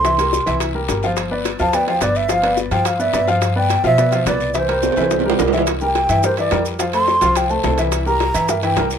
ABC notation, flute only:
X:1
M:4/4
L:1/8
Q:1/4=213
K:C
V:1 name="Flute"
c'4 z4 | z3 a g g d e | f2 z g f e2 f- | f g2 e3 d2 |
c6 z2 | z g3 c d2 z | z c'3 g a2 z | z _b3 e g2 z |]